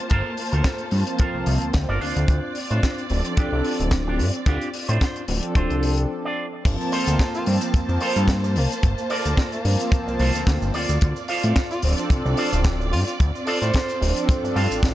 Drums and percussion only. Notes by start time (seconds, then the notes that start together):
0.10 kick, closed hi-hat
0.37 open hi-hat
0.53 closed hi-hat
0.64 kick, snare, closed hi-hat
0.78 closed hi-hat
0.91 open hi-hat
1.07 closed hi-hat
1.19 kick, closed hi-hat
1.46 open hi-hat
1.62 closed hi-hat
1.73 kick, snare, closed hi-hat
2.02 open hi-hat
2.16 closed hi-hat
2.28 kick, closed hi-hat
2.55 open hi-hat
2.71 closed hi-hat
2.83 kick, snare, closed hi-hat
2.98 closed hi-hat
3.10 open hi-hat
3.25 closed hi-hat
3.37 kick, closed hi-hat
3.65 open hi-hat
3.80 closed hi-hat
3.91 kick, snare, closed hi-hat
4.19 open hi-hat
4.34 closed hi-hat
4.46 kick, closed hi-hat
4.62 closed hi-hat
4.73 open hi-hat
4.89 closed hi-hat
5.01 kick, snare, closed hi-hat
5.16 closed hi-hat
5.28 open hi-hat
5.43 closed hi-hat
5.55 kick, closed hi-hat
5.70 closed hi-hat
5.83 open hi-hat
5.98 closed hi-hat
6.65 kick, closed hi-hat, crash, shaker
6.81 shaker
6.92 open hi-hat
7.07 closed hi-hat, shaker
7.19 kick, snare, closed hi-hat, shaker
7.35 closed hi-hat, shaker
7.46 open hi-hat
7.61 closed hi-hat, shaker
7.74 kick, closed hi-hat, shaker
7.89 shaker
8.01 open hi-hat
8.16 closed hi-hat, shaker
8.28 kick, snare, closed hi-hat, shaker
8.44 shaker
8.56 open hi-hat
8.71 closed hi-hat, shaker
8.83 kick, closed hi-hat, shaker
8.98 shaker
9.10 open hi-hat
9.25 closed hi-hat, shaker
9.37 kick, snare, closed hi-hat, shaker
9.52 closed hi-hat, shaker
9.65 open hi-hat
9.80 closed hi-hat, shaker
9.92 kick, closed hi-hat, shaker
10.08 shaker
10.19 open hi-hat
10.35 closed hi-hat, shaker
10.47 kick, snare, closed hi-hat, shaker
10.62 shaker
10.74 open hi-hat
10.89 closed hi-hat, shaker
11.01 kick, closed hi-hat, shaker
11.16 shaker
11.28 open hi-hat
11.43 closed hi-hat, shaker
11.56 kick, snare, closed hi-hat, shaker
11.71 closed hi-hat, shaker
11.82 open hi-hat
11.98 closed hi-hat, shaker
12.10 kick, closed hi-hat, shaker
12.26 shaker
12.37 open hi-hat
12.53 closed hi-hat, shaker
12.64 kick, snare, closed hi-hat, shaker
12.81 shaker
12.93 open hi-hat
13.07 closed hi-hat, shaker
13.20 kick, closed hi-hat, shaker
13.35 shaker
13.47 open hi-hat
13.62 closed hi-hat, shaker
13.74 kick, snare, closed hi-hat, shaker
13.89 closed hi-hat, shaker
14.02 open hi-hat
14.16 closed hi-hat, shaker
14.29 kick, closed hi-hat, shaker
14.45 shaker
14.56 open hi-hat
14.71 closed hi-hat, shaker
14.83 kick, snare, closed hi-hat, shaker